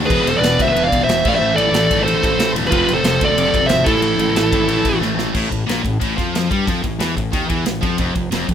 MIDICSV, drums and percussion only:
0, 0, Header, 1, 2, 480
1, 0, Start_track
1, 0, Tempo, 329128
1, 133, Time_signature, 4, 2, 24, 8
1, 12458, End_track
2, 0, Start_track
2, 0, Title_t, "Drums"
2, 53, Note_on_c, 9, 38, 35
2, 148, Note_on_c, 9, 36, 113
2, 154, Note_on_c, 9, 49, 105
2, 199, Note_off_c, 9, 38, 0
2, 294, Note_off_c, 9, 36, 0
2, 300, Note_off_c, 9, 49, 0
2, 397, Note_on_c, 9, 51, 78
2, 543, Note_off_c, 9, 51, 0
2, 635, Note_on_c, 9, 51, 107
2, 647, Note_on_c, 9, 38, 123
2, 781, Note_off_c, 9, 51, 0
2, 792, Note_off_c, 9, 38, 0
2, 867, Note_on_c, 9, 36, 95
2, 872, Note_on_c, 9, 51, 80
2, 1013, Note_off_c, 9, 36, 0
2, 1018, Note_off_c, 9, 51, 0
2, 1115, Note_on_c, 9, 51, 92
2, 1260, Note_off_c, 9, 51, 0
2, 1348, Note_on_c, 9, 36, 93
2, 1355, Note_on_c, 9, 51, 77
2, 1493, Note_off_c, 9, 36, 0
2, 1501, Note_off_c, 9, 51, 0
2, 1589, Note_on_c, 9, 51, 100
2, 1601, Note_on_c, 9, 38, 115
2, 1735, Note_off_c, 9, 51, 0
2, 1747, Note_off_c, 9, 38, 0
2, 1821, Note_on_c, 9, 49, 104
2, 1825, Note_on_c, 9, 36, 106
2, 1967, Note_off_c, 9, 49, 0
2, 1971, Note_off_c, 9, 36, 0
2, 2305, Note_on_c, 9, 51, 82
2, 2450, Note_off_c, 9, 51, 0
2, 2541, Note_on_c, 9, 51, 108
2, 2552, Note_on_c, 9, 38, 114
2, 2686, Note_off_c, 9, 51, 0
2, 2698, Note_off_c, 9, 38, 0
2, 2782, Note_on_c, 9, 36, 88
2, 2783, Note_on_c, 9, 51, 79
2, 2928, Note_off_c, 9, 36, 0
2, 2929, Note_off_c, 9, 51, 0
2, 3027, Note_on_c, 9, 51, 107
2, 3173, Note_off_c, 9, 51, 0
2, 3258, Note_on_c, 9, 36, 89
2, 3267, Note_on_c, 9, 51, 75
2, 3404, Note_off_c, 9, 36, 0
2, 3413, Note_off_c, 9, 51, 0
2, 3493, Note_on_c, 9, 51, 110
2, 3505, Note_on_c, 9, 38, 115
2, 3639, Note_off_c, 9, 51, 0
2, 3651, Note_off_c, 9, 38, 0
2, 3734, Note_on_c, 9, 51, 77
2, 3746, Note_on_c, 9, 38, 32
2, 3870, Note_off_c, 9, 38, 0
2, 3870, Note_on_c, 9, 38, 37
2, 3880, Note_off_c, 9, 51, 0
2, 3963, Note_on_c, 9, 51, 113
2, 3969, Note_on_c, 9, 36, 115
2, 4016, Note_off_c, 9, 38, 0
2, 4109, Note_off_c, 9, 51, 0
2, 4115, Note_off_c, 9, 36, 0
2, 4208, Note_on_c, 9, 51, 81
2, 4354, Note_off_c, 9, 51, 0
2, 4439, Note_on_c, 9, 51, 107
2, 4450, Note_on_c, 9, 38, 121
2, 4585, Note_off_c, 9, 51, 0
2, 4596, Note_off_c, 9, 38, 0
2, 4682, Note_on_c, 9, 51, 81
2, 4686, Note_on_c, 9, 36, 88
2, 4828, Note_off_c, 9, 51, 0
2, 4832, Note_off_c, 9, 36, 0
2, 4926, Note_on_c, 9, 51, 103
2, 5072, Note_off_c, 9, 51, 0
2, 5161, Note_on_c, 9, 36, 89
2, 5166, Note_on_c, 9, 51, 72
2, 5307, Note_off_c, 9, 36, 0
2, 5312, Note_off_c, 9, 51, 0
2, 5383, Note_on_c, 9, 51, 102
2, 5395, Note_on_c, 9, 38, 118
2, 5529, Note_off_c, 9, 51, 0
2, 5541, Note_off_c, 9, 38, 0
2, 5632, Note_on_c, 9, 51, 74
2, 5638, Note_on_c, 9, 36, 110
2, 5644, Note_on_c, 9, 38, 33
2, 5772, Note_off_c, 9, 38, 0
2, 5772, Note_on_c, 9, 38, 35
2, 5778, Note_off_c, 9, 51, 0
2, 5784, Note_off_c, 9, 36, 0
2, 5865, Note_on_c, 9, 51, 101
2, 5917, Note_off_c, 9, 38, 0
2, 6011, Note_off_c, 9, 51, 0
2, 6116, Note_on_c, 9, 51, 76
2, 6262, Note_off_c, 9, 51, 0
2, 6362, Note_on_c, 9, 51, 97
2, 6373, Note_on_c, 9, 38, 119
2, 6508, Note_off_c, 9, 51, 0
2, 6519, Note_off_c, 9, 38, 0
2, 6599, Note_on_c, 9, 36, 94
2, 6603, Note_on_c, 9, 51, 74
2, 6744, Note_off_c, 9, 36, 0
2, 6749, Note_off_c, 9, 51, 0
2, 6832, Note_on_c, 9, 51, 98
2, 6978, Note_off_c, 9, 51, 0
2, 7071, Note_on_c, 9, 51, 80
2, 7073, Note_on_c, 9, 36, 85
2, 7217, Note_off_c, 9, 51, 0
2, 7219, Note_off_c, 9, 36, 0
2, 7323, Note_on_c, 9, 38, 65
2, 7469, Note_off_c, 9, 38, 0
2, 7567, Note_on_c, 9, 38, 95
2, 7713, Note_off_c, 9, 38, 0
2, 7795, Note_on_c, 9, 57, 102
2, 7799, Note_on_c, 9, 36, 94
2, 7941, Note_off_c, 9, 57, 0
2, 7945, Note_off_c, 9, 36, 0
2, 8043, Note_on_c, 9, 36, 80
2, 8052, Note_on_c, 9, 51, 63
2, 8188, Note_off_c, 9, 36, 0
2, 8198, Note_off_c, 9, 51, 0
2, 8302, Note_on_c, 9, 51, 90
2, 8314, Note_on_c, 9, 38, 104
2, 8448, Note_off_c, 9, 51, 0
2, 8459, Note_off_c, 9, 38, 0
2, 8526, Note_on_c, 9, 36, 89
2, 8538, Note_on_c, 9, 51, 60
2, 8672, Note_off_c, 9, 36, 0
2, 8684, Note_off_c, 9, 51, 0
2, 8770, Note_on_c, 9, 36, 93
2, 8771, Note_on_c, 9, 51, 85
2, 8916, Note_off_c, 9, 36, 0
2, 8917, Note_off_c, 9, 51, 0
2, 9013, Note_on_c, 9, 36, 96
2, 9027, Note_on_c, 9, 51, 57
2, 9038, Note_on_c, 9, 38, 29
2, 9159, Note_off_c, 9, 36, 0
2, 9173, Note_off_c, 9, 51, 0
2, 9184, Note_off_c, 9, 38, 0
2, 9263, Note_on_c, 9, 51, 84
2, 9275, Note_on_c, 9, 38, 107
2, 9409, Note_off_c, 9, 51, 0
2, 9421, Note_off_c, 9, 38, 0
2, 9493, Note_on_c, 9, 36, 100
2, 9501, Note_on_c, 9, 51, 63
2, 9639, Note_off_c, 9, 36, 0
2, 9647, Note_off_c, 9, 51, 0
2, 9734, Note_on_c, 9, 36, 101
2, 9745, Note_on_c, 9, 51, 82
2, 9880, Note_off_c, 9, 36, 0
2, 9891, Note_off_c, 9, 51, 0
2, 9972, Note_on_c, 9, 36, 86
2, 9972, Note_on_c, 9, 51, 65
2, 10117, Note_off_c, 9, 36, 0
2, 10118, Note_off_c, 9, 51, 0
2, 10213, Note_on_c, 9, 51, 83
2, 10225, Note_on_c, 9, 38, 103
2, 10359, Note_off_c, 9, 51, 0
2, 10371, Note_off_c, 9, 38, 0
2, 10457, Note_on_c, 9, 36, 79
2, 10470, Note_on_c, 9, 51, 64
2, 10603, Note_off_c, 9, 36, 0
2, 10616, Note_off_c, 9, 51, 0
2, 10693, Note_on_c, 9, 36, 100
2, 10693, Note_on_c, 9, 51, 77
2, 10839, Note_off_c, 9, 36, 0
2, 10839, Note_off_c, 9, 51, 0
2, 10933, Note_on_c, 9, 51, 67
2, 10934, Note_on_c, 9, 36, 95
2, 11079, Note_off_c, 9, 51, 0
2, 11080, Note_off_c, 9, 36, 0
2, 11168, Note_on_c, 9, 51, 96
2, 11180, Note_on_c, 9, 38, 109
2, 11314, Note_off_c, 9, 51, 0
2, 11326, Note_off_c, 9, 38, 0
2, 11416, Note_on_c, 9, 36, 100
2, 11419, Note_on_c, 9, 51, 68
2, 11562, Note_off_c, 9, 36, 0
2, 11565, Note_off_c, 9, 51, 0
2, 11639, Note_on_c, 9, 51, 84
2, 11654, Note_on_c, 9, 36, 100
2, 11784, Note_off_c, 9, 51, 0
2, 11800, Note_off_c, 9, 36, 0
2, 11891, Note_on_c, 9, 51, 66
2, 11896, Note_on_c, 9, 36, 87
2, 12037, Note_off_c, 9, 51, 0
2, 12042, Note_off_c, 9, 36, 0
2, 12132, Note_on_c, 9, 51, 93
2, 12144, Note_on_c, 9, 38, 99
2, 12278, Note_off_c, 9, 51, 0
2, 12289, Note_off_c, 9, 38, 0
2, 12378, Note_on_c, 9, 51, 66
2, 12379, Note_on_c, 9, 36, 85
2, 12458, Note_off_c, 9, 36, 0
2, 12458, Note_off_c, 9, 51, 0
2, 12458, End_track
0, 0, End_of_file